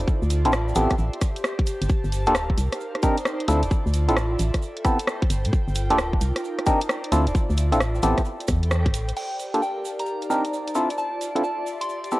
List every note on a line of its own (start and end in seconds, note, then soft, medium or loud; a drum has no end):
0.00 0.76 F4 medium
0.00 0.24 C5 medium
0.00 1.21 D5 medium
0.08 kick loud
0.08 shaker medium
0.22 0.47 D2 loud
0.22 shaker soft
0.27 1.21 E5 medium
0.27 1.21 C6 medium
0.27 closed hi-hat loud
0.27 shaker medium
0.45 0.73 A1 medium
0.45 0.52 C4 medium
0.45 0.52 D4 medium
0.45 0.52 E4 medium
0.45 0.52 F4 medium
0.45 0.52 A4 loud
0.45 closed hi-hat medium
0.45 shaker soft
0.52 cross-stick loud
0.52 shaker medium
0.68 shaker soft
0.75 0.87 A1 medium
0.75 0.94 B3 medium
0.75 0.94 C4 medium
0.75 0.94 E4 medium
0.75 0.94 G4 medium
0.75 2.97 G4 medium
0.75 0.94 A4 medium
0.75 closed hi-hat loud
0.75 shaker loud
0.90 kick medium
0.90 cross-stick medium
0.90 closed hi-hat medium
0.90 shaker soft
0.98 1.10 A1 loud
0.98 shaker soft
1.13 2.18 C5 medium
1.13 closed hi-hat soft
1.21 kick loud
1.21 cross-stick medium
1.21 closed hi-hat loud
1.21 shaker medium
1.29 2.58 A5 medium
1.36 closed hi-hat medium
1.36 shaker soft
1.44 cross-stick loud
1.44 shaker soft
1.59 kick loud
1.59 closed hi-hat medium
1.66 closed hi-hat loud
1.66 shaker loud
1.82 1.88 G1 loud
1.82 closed hi-hat medium
1.82 shaker soft
1.89 kick loud
1.89 shaker medium
2.03 2.28 G1 loud
2.03 2.97 A#4 medium
2.03 shaker soft
2.09 2.96 F5 medium
2.09 closed hi-hat loud
2.09 shaker medium
2.26 2.54 D1 medium
2.26 2.34 A#3 medium
2.26 2.34 D4 medium
2.26 2.34 F4 medium
2.26 2.34 G4 medium
2.26 2.34 A4 medium
2.26 closed hi-hat medium
2.26 shaker soft
2.35 cross-stick loud
2.35 shaker medium
2.50 kick medium
2.57 2.69 C2 medium
2.57 3.49 D#4 medium
2.57 closed hi-hat loud
2.57 shaker medium
2.65 3.88 C5 medium
2.72 4.85 D5 medium
2.72 cross-stick medium
2.72 closed hi-hat medium
2.72 shaker soft
2.80 shaker soft
2.95 cross-stick soft
2.95 closed hi-hat soft
3.00 3.16 C4 medium
3.00 3.16 D4 medium
3.00 3.16 D#4 medium
3.00 3.16 G4 medium
3.00 3.16 A#4 loud
3.00 3.49 A#5 medium
3.00 kick loud
3.00 closed hi-hat loud
3.00 shaker loud
3.17 closed hi-hat medium
3.17 shaker soft
3.25 cross-stick loud
3.25 shaker medium
3.40 closed hi-hat medium
3.48 3.65 D2 loud
3.48 3.62 C4 medium
3.48 3.62 D4 medium
3.48 3.62 E4 medium
3.48 3.62 F4 medium
3.48 4.40 F4 medium
3.48 3.62 A4 loud
3.48 closed hi-hat loud
3.48 shaker medium
3.63 3.69 D1 medium
3.63 closed hi-hat medium
3.63 shaker soft
3.71 kick loud
3.71 shaker soft
3.86 4.10 D2 loud
3.86 4.39 C6 medium
3.86 shaker soft
3.91 4.85 E5 medium
3.91 closed hi-hat loud
3.91 shaker medium
4.09 4.36 A1 medium
4.09 4.16 C4 medium
4.09 4.16 D4 medium
4.09 4.16 E4 medium
4.09 4.16 F4 medium
4.09 4.16 A4 loud
4.09 closed hi-hat medium
4.09 shaker soft
4.17 cross-stick loud
4.17 shaker soft
4.39 4.51 A1 medium
4.39 5.53 A4 medium
4.39 closed hi-hat loud
4.39 shaker medium
4.54 6.61 G5 medium
4.54 kick medium
4.54 cross-stick medium
4.54 closed hi-hat medium
4.54 shaker soft
4.62 5.82 C5 medium
4.62 shaker soft
4.77 closed hi-hat soft
4.85 4.98 B3 medium
4.85 4.98 C4 medium
4.85 4.98 E4 medium
4.85 4.98 G4 medium
4.85 4.98 A4 medium
4.85 kick loud
4.85 cross-stick medium
4.85 closed hi-hat loud
4.85 shaker medium
4.93 5.53 B5 medium
4.99 closed hi-hat medium
4.99 shaker soft
5.07 cross-stick loud
5.07 shaker soft
5.22 kick loud
5.22 closed hi-hat medium
5.30 5.47 G1 loud
5.30 closed hi-hat loud
5.30 shaker loud
5.45 5.51 A2 medium
5.45 closed hi-hat medium
5.45 shaker soft
5.53 6.61 F4 medium
5.53 kick loud
5.53 shaker soft
5.68 5.92 G1 loud
5.68 shaker soft
5.75 6.61 A#4 medium
5.75 closed hi-hat loud
5.75 shaker medium
5.87 6.18 D1 medium
5.87 5.98 A#3 medium
5.87 5.98 D4 medium
5.87 5.98 F4 medium
5.87 5.98 G4 medium
5.87 5.98 A4 medium
5.87 6.22 A5 medium
5.87 closed hi-hat medium
5.87 shaker soft
5.98 cross-stick loud
5.98 shaker soft
6.13 kick medium
6.21 6.32 C2 medium
6.21 7.13 D#4 medium
6.21 closed hi-hat loud
6.21 shaker medium
6.36 cross-stick medium
6.36 closed hi-hat medium
6.36 shaker soft
6.44 7.51 C5 medium
6.44 shaker soft
6.59 7.13 A#5 medium
6.59 cross-stick soft
6.59 closed hi-hat soft
6.64 6.80 C4 medium
6.64 6.80 D4 medium
6.64 6.80 D#4 medium
6.64 6.80 G4 medium
6.64 6.80 A#4 loud
6.64 8.49 D5 medium
6.64 kick loud
6.64 closed hi-hat loud
6.64 shaker medium
6.81 closed hi-hat medium
6.81 shaker soft
6.89 cross-stick loud
6.89 shaker medium
7.04 closed hi-hat medium
7.12 7.29 D2 loud
7.12 7.25 C4 medium
7.12 7.25 D4 medium
7.12 7.25 E4 medium
7.12 7.25 F4 medium
7.12 8.03 F4 medium
7.12 7.25 A4 medium
7.12 closed hi-hat loud
7.12 shaker medium
7.25 7.33 D1 medium
7.25 8.49 E5 medium
7.25 closed hi-hat medium
7.25 shaker soft
7.35 kick loud
7.35 shaker medium
7.50 7.74 D2 loud
7.50 shaker soft
7.54 8.03 C6 medium
7.54 closed hi-hat loud
7.54 shaker medium
7.72 8.00 A1 medium
7.72 7.79 C4 medium
7.72 7.79 D4 medium
7.72 7.79 E4 medium
7.72 7.79 F4 medium
7.72 7.79 A4 loud
7.72 closed hi-hat medium
7.72 shaker soft
7.80 cross-stick loud
7.80 shaker medium
7.95 shaker soft
8.03 8.14 A1 medium
8.03 8.21 B3 medium
8.03 8.21 C4 medium
8.03 8.21 E4 medium
8.03 8.21 G4 medium
8.03 8.21 A4 medium
8.03 9.17 A4 medium
8.03 closed hi-hat loud
8.03 shaker medium
8.17 9.45 G5 medium
8.17 kick medium
8.17 cross-stick medium
8.17 closed hi-hat medium
8.17 shaker soft
8.25 9.45 C5 medium
8.25 9.17 B5 medium
8.25 shaker soft
8.40 closed hi-hat soft
8.40 shaker soft
8.48 8.87 E2 loud
8.48 kick loud
8.48 cross-stick medium
8.48 closed hi-hat loud
8.48 shaker medium
8.63 closed hi-hat medium
8.63 shaker soft
8.71 cross-stick loud
8.71 shaker medium
8.86 8.95 G1 loud
8.86 kick loud
8.86 closed hi-hat medium
8.94 9.13 A1 loud
8.94 closed hi-hat loud
8.94 shaker medium
9.08 closed hi-hat medium
9.08 shaker soft
9.16 10.24 G4 medium
9.16 12.20 D5 medium
9.16 9.36 G5 loud
9.16 crash medium
9.16 shaker soft
9.28 10.24 A#4 medium
9.34 10.24 F5 medium
9.39 closed hi-hat soft
9.39 shaker medium
9.49 9.85 A5 medium
9.54 9.61 A#3 medium
9.54 9.61 D4 medium
9.54 9.61 F4 medium
9.54 9.61 G4 medium
9.54 9.61 A4 medium
9.54 closed hi-hat medium
9.54 shaker soft
9.62 9.79 G5 medium
9.62 shaker medium
9.85 10.76 D#4 medium
9.85 shaker medium
9.99 12.12 D5 medium
9.99 10.92 A#5 medium
9.99 closed hi-hat medium
9.99 shaker soft
10.06 shaker soft
10.22 11.15 C5 medium
10.22 closed hi-hat soft
10.22 shaker soft
10.27 10.44 C4 medium
10.27 10.44 D4 medium
10.27 10.44 D#4 medium
10.27 10.44 G4 medium
10.27 10.44 A#4 loud
10.27 10.76 A#5 medium
10.27 shaker medium
10.45 closed hi-hat medium
10.45 shaker soft
10.54 shaker medium
10.68 closed hi-hat soft
10.68 shaker soft
10.75 10.89 C4 medium
10.75 10.89 D4 medium
10.75 10.89 E4 medium
10.75 10.89 F4 medium
10.75 11.67 F4 medium
10.75 10.89 A4 medium
10.75 shaker medium
10.90 closed hi-hat medium
10.90 shaker soft
10.98 11.18 A5 medium
10.98 shaker medium
11.18 12.12 E5 medium
11.18 12.12 C6 medium
11.18 closed hi-hat soft
11.18 shaker medium
11.35 11.43 C4 medium
11.35 11.43 D4 medium
11.35 11.43 E4 medium
11.35 11.43 F4 medium
11.35 11.43 A4 loud
11.35 closed hi-hat medium
11.35 shaker soft
11.44 11.60 A5 medium
11.44 shaker medium
11.67 12.20 G4 medium
11.67 shaker medium
11.81 12.20 C6 medium
11.81 closed hi-hat medium
11.81 shaker soft
11.89 shaker medium
12.04 12.20 C5 medium
12.04 closed hi-hat soft
12.04 shaker soft
12.11 12.20 B3 medium
12.11 12.20 C4 medium
12.11 12.20 E4 medium
12.11 12.20 G4 medium
12.11 12.20 A4 medium
12.11 shaker loud